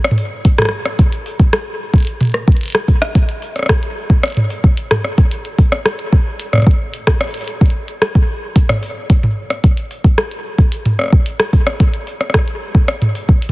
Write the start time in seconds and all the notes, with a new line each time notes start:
0.04 cross-stick, closed hi-hat
0.11 mid tom
0.18 open hi-hat
0.45 kick, closed hi-hat
0.58 cross-stick, mid tom
0.62 cross-stick
0.65 cross-stick
0.69 cross-stick
0.85 cross-stick, closed hi-hat
0.99 kick, closed hi-hat
1.12 closed hi-hat
1.26 open hi-hat
1.40 kick, closed hi-hat
1.53 cross-stick, closed hi-hat
1.94 kick, closed hi-hat
1.96 closed hi-hat
1.98 closed hi-hat
2.00 closed hi-hat
2.03 closed hi-hat
2.05 closed hi-hat
2.07 closed hi-hat
2.21 closed hi-hat, mid tom
2.23 closed hi-hat
2.25 closed hi-hat
2.27 closed hi-hat
2.30 closed hi-hat
2.32 cross-stick, closed hi-hat
2.48 kick, closed hi-hat
2.52 closed hi-hat
2.57 closed hi-hat
2.61 closed hi-hat
2.63 closed hi-hat
2.66 closed hi-hat
2.68 closed hi-hat
2.70 closed hi-hat
2.72 cross-stick, closed hi-hat
2.88 kick, open hi-hat
3.02 cross-stick, closed hi-hat
3.15 kick, closed hi-hat
3.29 closed hi-hat
3.42 open hi-hat
3.56 cross-stick, closed hi-hat
3.59 cross-stick
3.63 cross-stick
3.66 kick, cross-stick
3.69 cross-stick, closed hi-hat
3.83 closed hi-hat
4.10 kick
4.23 cross-stick, closed hi-hat
4.26 closed hi-hat
4.28 closed hi-hat
4.30 closed hi-hat
4.32 closed hi-hat
4.35 closed hi-hat
4.37 closed hi-hat, mid tom
4.50 open hi-hat
4.64 kick
4.77 closed hi-hat
4.91 cross-stick, mid tom
5.04 cross-stick
5.18 kick, closed hi-hat
5.31 closed hi-hat
5.45 closed hi-hat
5.59 kick, open hi-hat
5.72 cross-stick, closed hi-hat
5.86 cross-stick, closed hi-hat
5.99 closed hi-hat
6.13 kick
6.40 closed hi-hat
6.53 cross-stick, closed hi-hat, mid tom
6.55 cross-stick
6.58 cross-stick, mid tom
6.60 cross-stick
6.62 cross-stick, closed hi-hat, mid tom
6.64 kick, cross-stick
6.71 closed hi-hat
6.94 closed hi-hat
7.07 kick, cross-stick
7.21 cross-stick, open hi-hat
7.24 open hi-hat
7.27 open hi-hat
7.31 closed hi-hat, open hi-hat
7.34 open hi-hat
7.38 open hi-hat
7.41 open hi-hat
7.44 closed hi-hat, open hi-hat
7.61 kick, closed hi-hat
7.66 closed hi-hat
7.70 closed hi-hat
7.88 closed hi-hat
8.02 cross-stick, closed hi-hat
8.15 kick, closed hi-hat
8.56 kick, closed hi-hat
8.69 cross-stick, closed hi-hat, mid tom
8.83 open hi-hat
9.10 kick, closed hi-hat
9.23 mid tom
9.50 cross-stick, closed hi-hat
9.64 kick, closed hi-hat
9.77 closed hi-hat
9.91 open hi-hat
10.04 kick, closed hi-hat
10.18 cross-stick, closed hi-hat
10.31 closed hi-hat
10.58 kick, closed hi-hat
10.72 closed hi-hat
10.86 closed hi-hat, mid tom
10.99 cross-stick
11.01 cross-stick
11.04 cross-stick
11.06 cross-stick
11.08 cross-stick
11.10 kick, cross-stick
11.26 closed hi-hat
11.40 cross-stick
11.53 kick, open hi-hat
11.67 cross-stick, closed hi-hat
11.80 kick, closed hi-hat
11.94 closed hi-hat
12.07 open hi-hat
12.21 cross-stick, closed hi-hat
12.30 cross-stick
12.34 kick, cross-stick, closed hi-hat
12.39 cross-stick
12.48 closed hi-hat
12.75 kick
12.88 cross-stick, closed hi-hat
13.02 closed hi-hat, mid tom
13.15 open hi-hat
13.29 kick
13.42 closed hi-hat